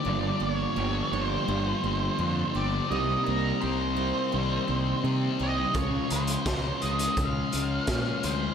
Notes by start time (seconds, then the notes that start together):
Already playing: A#3 D5
0.04 G1 G2 D3 F3 G3 A#3
0.08 D4
0.40 G1 A#3 D5
0.54 C#5
0.75 G1 G2 D3 G3 G4
1.12 G1 G2 D3 F3 A#3 D4 C#5
1.23 C5
1.45 G1 G2 D3 F3 G3
1.83 G1 D3 G3 A#3
2.18 F2 G2 D3 G3 D4
2.55 G1 G4 D5
2.89 C2 C3 D#3 G3 A#3 D#4 D#5
2.93 C4
3.24 A#3 A#4
3.28 C2
3.61 C2 C3 G3 G4 C5
3.65 C4
3.95 C3 G3 A#3 C4 D#4
4.32 C2 C3 D#3 G3 C4
4.67 C2 G3 A#3 C4
5.03 C3 G3 C4
5.39 C2 G4 D#5
5.73 C#2 C#3 F3 G#3 C#4 F4, kick, closed hi-hat
5.77 C#5
6.10 C#2 G#3 C5, closed hi-hat
6.27 closed hi-hat
6.46 C#2 C#3 G#3 C#4 G#4, kick, snare, closed hi-hat
6.80 C#2 C#3 G#3 F4 D#5, closed hi-hat
6.99 closed hi-hat
7.16 C#2 C#3 F3 G#3 C#4 F5, kick, closed hi-hat
7.52 C#2 G#3 C#4, closed hi-hat
7.87 A#2 C#3 G#3 C#4, kick, snare, closed hi-hat
8.23 D2 G#4 C5, closed hi-hat